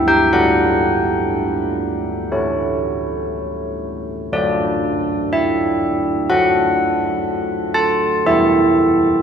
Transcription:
Already playing: G3 E4 B4
0.08 G5
0.33 A3 D4 D5 F#5
2.32 A3 E4 C#5
4.32 F#3 D4 A4 D5
5.33 E5
6.30 F#3 D4 A4 F#5
7.74 A5
8.26 E3 B3 G4 E5

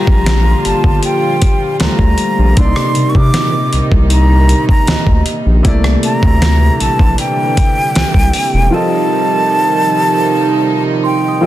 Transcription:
Already playing: A#2 D3 F3 G3 F4 G4 A#4 G5 A#5
0.07 A#1, kick
0.26 snare, closed hi-hat
0.65 G1 A5, closed hi-hat
0.84 G1, kick
1.03 G5, closed hi-hat
1.42 kick, closed hi-hat
1.79 D2 G3 A3 F4 C5 A#5, snare, closed hi-hat
1.99 D2, kick
2.18 closed hi-hat
2.38 A#1
2.55 C2 A#2 C3 D#3 A#3 D4 D#4 C6, kick, closed hi-hat
2.60 D5
2.65 D#4
2.76 cross-stick
2.95 C3, closed hi-hat
3.10 C#6
3.15 C3 D6, kick
3.34 snare, closed hi-hat
3.73 C2, closed hi-hat
3.92 C2, kick
4.10 A#5, closed hi-hat
4.49 closed hi-hat
4.69 A#5, kick
4.87 D2 D#5, snare, closed hi-hat
5.07 D2, kick
5.26 closed hi-hat
5.46 A#1
5.63 C2 C3 D3 E3 G3 A3 A#3 E4, kick, closed hi-hat
5.68 D5
5.84 cross-stick
6.03 A#5, closed hi-hat
6.23 D2, kick
6.42 snare, closed hi-hat
6.80 A#1 A5, closed hi-hat
6.99 A#1, kick
7.18 G5, closed hi-hat
7.57 kick, closed hi-hat
7.95 C2, snare, closed hi-hat
8.14 C2, kick
8.33 open hi-hat
8.54 E1
8.70 D#3 F3 D#4 F4 A4 A5
8.76 D#5
11.04 G5 C6
11.28 D#6
11.41 F3 F4 A4 D#5

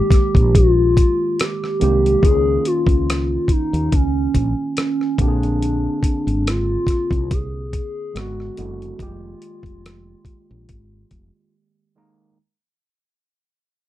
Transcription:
Already playing: D#3 G#3 A#3 G4
0.11 muted fretless electric bass stroke, kick, cross-stick, closed hi-hat
0.35 A#1, kick, closed hi-hat
0.55 F4, kick, closed hi-hat
0.97 kick, closed hi-hat
1.40 G4, cross-stick, closed hi-hat
1.64 cross-stick
1.80 C2 D#3 G#3 A#3 G4, closed hi-hat
2.06 closed hi-hat
2.22 C#2 D#3 A#3 C#4 F4 G#4, kick, closed hi-hat
2.65 F4, closed hi-hat
2.87 C#2, kick, closed hi-hat
3.10 cross-stick, closed hi-hat
3.48 D#4, muted fretless electric bass stroke, kick, closed hi-hat
3.73 D#2, closed hi-hat
3.92 C#2 C#4, kick, closed hi-hat
4.35 A#1, kick, closed hi-hat
4.77 C#4, cross-stick, closed hi-hat
5.01 cross-stick
5.18 A#1 D3 A#3 C4 D4 G4, kick, closed hi-hat
5.28 G#4
5.43 closed hi-hat
5.62 closed hi-hat
6.03 kick, closed hi-hat
6.27 G#1, closed hi-hat
6.47 F4, cross-stick, closed hi-hat
6.87 muted fretless electric bass stroke, kick, cross-stick, closed hi-hat
7.11 C2, kick, closed hi-hat
7.31 G#4, kick, closed hi-hat
7.73 kick, closed hi-hat
8.13 G#1 D3 G#3 B3 F#4, cross-stick, closed hi-hat
8.18 F#4
8.40 cross-stick
8.57 F#1 D3 G#3 B3 E4, closed hi-hat
8.82 closed hi-hat
8.99 F1 D#3 G#3 A#3 G4, kick, closed hi-hat
9.04 F4
9.42 closed hi-hat
9.63 F1, kick, closed hi-hat
9.86 cross-stick, closed hi-hat
10.25 muted fretless electric bass stroke, kick, closed hi-hat
10.51 A#1
10.69 G#1, kick, closed hi-hat
11.11 F1, kick, closed hi-hat
11.96 D#3 G#3 A#3 D#4

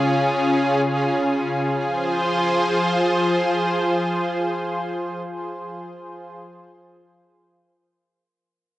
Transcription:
Already playing: C#3 C#4 F4 G#4
1.80 F3 F4 G#4 C5

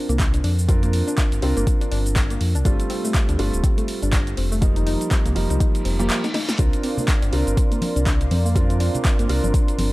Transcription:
Already playing: C4 D4 F4 A#4
0.09 C2 A#3, closed hi-hat, shaker
0.19 kick, clap, closed hi-hat, shaker
0.34 D4, closed hi-hat, shaker
0.44 F2 D4, open hi-hat
0.59 shaker
0.68 C4 D4 F4 A#4, kick, closed hi-hat, shaker
0.83 A#3, closed hi-hat, shaker
0.93 open hi-hat
1.07 D4, closed hi-hat, shaker
1.18 D4, kick, clap, closed hi-hat, shaker
1.32 G1, closed hi-hat, shaker
1.42 C2 C4 D4 F4 A#4, open hi-hat
1.57 G1 A#3, closed hi-hat, shaker
1.67 kick, closed hi-hat, shaker
1.81 D4, closed hi-hat, shaker
1.91 G1 D4, open hi-hat
2.06 closed hi-hat, shaker
2.16 C4, kick, clap, closed hi-hat, shaker
2.30 A#3, closed hi-hat, shaker
2.41 F2, open hi-hat
2.55 C2 D4, closed hi-hat, shaker
2.65 G1 G3 A3 C4 D4 F4, kick, closed hi-hat, shaker
2.80 closed hi-hat, shaker
2.90 C4, open hi-hat
3.04 A3, shaker
3.14 kick, clap, closed hi-hat, shaker
3.29 D2 D4, closed hi-hat, shaker
3.38 G1 G3 A3 C4 D4 F4, open hi-hat
3.53 D1, closed hi-hat, shaker
3.64 C4, kick, closed hi-hat, shaker
3.78 A3, closed hi-hat, shaker
3.88 open hi-hat
4.02 G1 D4, closed hi-hat, shaker
4.13 D4, kick, clap, closed hi-hat, shaker
4.27 closed hi-hat, shaker
4.37 F1 C4, open hi-hat
4.52 A3, shaker
4.61 F3 G3 A#3 D#4, kick, closed hi-hat, shaker
4.76 D#4, closed hi-hat, shaker
4.86 D#4, open hi-hat
5.01 closed hi-hat, shaker
5.11 C4, kick, clap, closed hi-hat, shaker
5.25 C2 A#3, closed hi-hat, shaker
5.35 F1 F3 G3 A#3 D#4, open hi-hat
5.50 C2 D#4, closed hi-hat, shaker
5.60 D#4, kick, closed hi-hat, reverse cymbal, shaker
5.75 closed hi-hat, shaker
5.85 F1 C4, open hi-hat
5.99 F3 G3 A#3 G4, closed hi-hat, shaker
6.10 clap, closed hi-hat, shaker
6.24 D#4, snare, closed hi-hat, shaker
6.34 D#4, snare, open hi-hat
6.49 snare, closed hi-hat, shaker
6.58 C2 C4 D4 F4 A#4 D5 F5 C6, kick, closed hi-hat, shaker
6.73 closed hi-hat, shaker
6.83 C4, open hi-hat
6.98 A#3, low conga, shaker
7.08 kick, clap, closed hi-hat, shaker
7.22 G1 D4, closed hi-hat, shaker
7.32 C2 C4 D4 F4 A#4, open hi-hat
7.47 G1, closed hi-hat, shaker
7.57 C4, kick, closed hi-hat, shaker
7.71 A#3, closed hi-hat, shaker
7.82 open hi-hat, high conga
7.96 C2 D4, closed hi-hat, shaker
8.06 D4, kick, clap, closed hi-hat, shaker
8.21 closed hi-hat, shaker
8.31 F2 C4, open hi-hat, high conga
8.45 A#3, shaker
8.55 C4 D4 F4 A#4, kick, closed hi-hat, shaker
8.70 D4, closed hi-hat, shaker
8.80 D4, open hi-hat
8.95 closed hi-hat, low conga, shaker
9.05 C4, kick, clap, closed hi-hat, shaker
9.19 G1 A#3, closed hi-hat, shaker
9.29 C2 C4 D4 F4 A#4, open hi-hat
9.44 G1 D4, closed hi-hat, high conga, shaker
9.54 D4, kick, closed hi-hat, shaker
9.68 closed hi-hat, shaker
9.78 G1 C4, open hi-hat, high conga

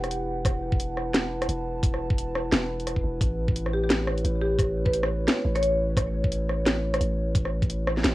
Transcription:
Already playing: E1 E4 B4 F#5 G5
0.04 cross-stick, closed hi-hat
0.11 closed hi-hat
0.45 E1, kick, cross-stick, closed hi-hat
0.52 A5
0.72 kick
0.80 closed hi-hat
0.97 cross-stick
1.14 snare, closed hi-hat
1.42 cross-stick, closed hi-hat
1.49 E1, closed hi-hat
1.83 kick, closed hi-hat
1.94 cross-stick
2.10 kick
2.18 closed hi-hat
2.35 cross-stick
2.52 E1, snare, closed hi-hat
2.80 closed hi-hat
2.87 cross-stick, closed hi-hat
2.96 kick
3.04 E1
3.21 A1 A3, kick, closed hi-hat
3.48 kick
3.56 closed hi-hat
3.63 C#5, cross-stick
3.73 G4
3.83 G4
3.90 snare, closed hi-hat
4.07 cross-stick
4.18 closed hi-hat
4.24 A1, closed hi-hat
4.42 G4
4.59 kick, cross-stick, closed hi-hat
4.86 B4, kick
4.94 closed hi-hat
5.03 cross-stick
5.28 snare, closed hi-hat
5.45 A1
5.55 C#5, cross-stick, closed hi-hat
5.62 C#5, closed hi-hat
5.97 A1, kick, cross-stick, closed hi-hat
6.24 kick
6.32 closed hi-hat
6.49 cross-stick
6.66 snare, closed hi-hat
6.94 cross-stick, closed hi-hat
7.00 A1, closed hi-hat
7.35 kick, closed hi-hat
7.45 cross-stick
7.62 kick, closed hi-hat
7.70 closed hi-hat
7.87 cross-stick
7.97 snare
8.04 A1, snare, closed hi-hat

